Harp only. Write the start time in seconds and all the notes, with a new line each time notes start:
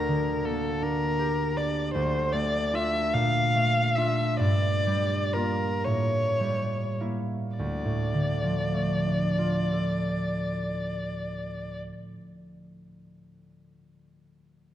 Already playing: D2 D4
0.08 D3
0.45 A#3
0.82 D4
1.19 G4
1.57 D4
1.95 D2
2.33 A3
2.73 D4 F4
3.14 A#2
3.55 A3
3.97 D4 F4
4.40 G2
4.86 G3
5.34 A#3 F4
5.87 A2
6.40 G3
7.00 A#3 E4
7.59 D2
7.85 A2
8.14 D3
8.44 F3
8.74 A3
9.06 D4
9.39 F4
9.72 A4
10.09 D5